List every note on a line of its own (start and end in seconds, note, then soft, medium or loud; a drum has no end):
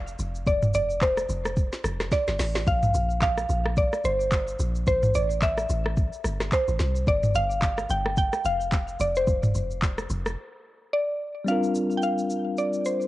0.00 0.15 F1 medium
0.00 0.43 F5 loud
0.08 shaker medium
0.19 0.45 F1 medium
0.19 shaker loud
0.35 shaker medium
0.47 0.72 F1 loud
0.47 0.60 D5 loud
0.47 kick loud
0.47 shaker medium
0.63 mid tom loud
0.63 shaker medium
0.74 1.26 F1 loud
0.74 1.00 D5 loud
0.74 shaker loud
0.90 shaker medium
1.02 2.08 C5 medium
1.02 kick loud
1.02 clap medium
1.02 shaker medium
1.17 cross-stick medium
1.17 shaker medium
1.29 1.70 F1 loud
1.29 shaker medium
1.45 cross-stick loud
1.45 shaker medium
1.57 kick loud
1.57 shaker medium
1.73 snare medium
1.73 shaker medium
1.84 2.10 F1 loud
1.84 cross-stick loud
1.84 shaker loud
2.00 cross-stick medium
2.00 snare medium
2.00 shaker medium
2.12 2.69 D5 loud
2.12 kick loud
2.12 snare medium
2.12 shaker medium
2.28 2.39 G1 loud
2.28 snare medium
2.28 shaker medium
2.39 2.65 A1 medium
2.39 snare loud
2.39 open hi-hat medium
2.39 shaker loud
2.55 snare loud
2.55 shaker medium
2.67 2.93 A#1 loud
2.67 3.21 F5 loud
2.67 kick loud
2.67 shaker medium
2.83 mid tom medium
2.83 shaker medium
2.94 3.46 A#1 loud
2.94 shaker loud
3.10 shaker medium
3.22 3.79 F5 loud
3.22 kick loud
3.22 clap loud
3.22 shaker medium
3.38 cross-stick medium
3.38 shaker medium
3.49 3.90 A#1 loud
3.49 shaker medium
3.66 cross-stick loud
3.77 4.06 D5 loud
3.77 kick loud
3.77 shaker medium
3.93 cross-stick medium
3.93 shaker medium
4.04 4.56 G1 loud
4.04 4.86 C5 medium
4.04 shaker loud
4.20 shaker medium
4.32 kick loud
4.32 clap loud
4.32 shaker medium
4.48 shaker medium
4.59 4.85 A#1 loud
4.59 shaker loud
4.75 shaker medium
4.87 5.13 A1 loud
4.87 5.16 C5 loud
4.87 kick loud
4.87 shaker medium
5.03 mid tom loud
5.03 shaker medium
5.14 5.66 A1 loud
5.14 5.27 D5 loud
5.14 shaker loud
5.30 shaker medium
5.42 6.56 E5 loud
5.42 kick loud
5.42 clap medium
5.42 shaker medium
5.58 cross-stick medium
5.58 shaker medium
5.70 6.10 A1 loud
5.70 shaker loud
5.86 cross-stick loud
5.97 kick loud
5.97 shaker medium
6.13 shaker medium
6.24 6.50 G1 medium
6.24 cross-stick medium
6.24 shaker loud
6.40 cross-stick medium
6.40 snare medium
6.40 shaker medium
6.52 7.09 C5 medium
6.52 kick loud
6.52 clap medium
6.52 shaker medium
6.68 6.79 A1 loud
6.68 shaker medium
6.79 7.05 C2 medium
6.79 snare medium
6.79 shaker loud
6.96 shaker medium
7.07 7.33 G1 loud
7.07 7.36 D5 loud
7.07 kick loud
7.07 shaker medium
7.23 mid tom loud
7.23 shaker medium
7.35 7.86 G1 loud
7.35 7.92 F5 loud
7.35 shaker loud
7.51 shaker medium
7.62 kick loud
7.62 clap medium
7.62 shaker medium
7.78 cross-stick medium
7.78 shaker medium
7.90 8.30 G1 loud
7.90 8.17 G5 loud
7.90 shaker medium
8.06 cross-stick loud
8.17 8.46 G5 loud
8.17 kick loud
8.17 shaker medium
8.33 cross-stick medium
8.33 shaker medium
8.45 8.96 F1 medium
8.45 8.96 F5 loud
8.45 shaker loud
8.61 shaker medium
8.72 kick loud
8.72 clap loud
8.72 shaker medium
8.88 shaker medium
9.00 9.26 F1 loud
9.00 9.15 D5 loud
9.00 shaker loud
9.16 10.77 C5 medium
9.16 shaker medium
9.27 9.53 F1 loud
9.27 kick loud
9.27 shaker medium
9.43 mid tom loud
9.43 shaker medium
9.55 10.06 F1 loud
9.55 shaker loud
9.71 shaker medium
9.82 kick loud
9.82 clap loud
9.82 shaker medium
9.98 cross-stick medium
9.98 shaker medium
10.10 10.36 F1 loud
10.10 shaker loud
10.26 cross-stick loud
10.26 shaker medium
10.93 11.49 D5 medium
11.44 13.07 G3 medium
11.44 13.07 C4 medium
11.44 13.07 D4 medium
11.44 11.94 F5 loud
11.44 shaker medium
11.50 13.07 F4 medium
11.50 13.07 A#4 medium
11.63 shaker medium
11.75 shaker medium
11.91 shaker medium
11.97 12.03 G5 medium
12.02 12.54 F5 medium
12.02 shaker medium
12.18 shaker medium
12.30 shaker medium
12.57 12.86 D5 medium
12.57 shaker medium
12.73 shaker medium
12.85 13.07 C5 medium
12.85 shaker medium
13.01 shaker soft